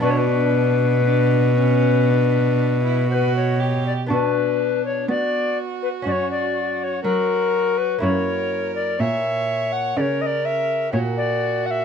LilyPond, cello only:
\new Staff \with { instrumentName = "Cello" } { \clef bass \time 4/4 \key b \minor \tempo 4 = 61 b,1 | b,4 b4 fis,4 fis4 | fis,4 ais,4 cis4 ais,4 | }